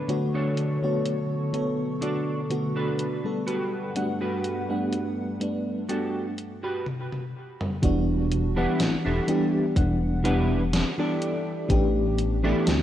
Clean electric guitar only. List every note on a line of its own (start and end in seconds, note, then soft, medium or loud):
0.00 0.19 D4 medium
0.00 0.19 A4 medium
0.00 0.19 B4 medium
0.34 1.18 D4 medium
0.34 1.18 A4 medium
0.34 1.19 C#5 medium
2.01 2.39 D4 medium
2.01 2.39 A4 medium
2.01 2.39 D5 medium
2.76 3.36 D4 medium
2.76 3.36 A4 medium
2.76 3.36 B4 medium
3.47 4.06 F#4 medium
3.47 4.06 G4 medium
3.47 4.06 B4 medium
4.21 5.05 F#4 medium
4.21 5.05 G4 medium
4.21 5.06 B4 medium
5.89 6.26 F#4 medium
5.89 6.26 G4 medium
5.89 6.27 A4 medium
6.63 6.86 F#4 medium
6.63 6.86 G4 medium
6.63 6.86 B4 medium
8.56 8.79 D4 loud
8.56 8.79 E4 loud
8.56 8.79 G4 loud
8.56 8.80 B4 loud
9.05 9.65 D4 medium
9.05 9.65 E4 medium
9.05 9.65 G4 medium
9.05 9.65 A4 medium
10.24 10.62 D4 loud
10.24 10.62 E4 loud
10.24 10.62 G4 loud
10.24 10.62 B4 loud
10.98 11.70 D4 medium
10.98 11.70 E4 medium
10.98 11.70 G4 medium
10.98 11.70 D5 medium
12.44 12.66 D4 loud
12.44 12.67 E4 loud
12.44 12.67 G4 loud
12.44 12.67 A4 loud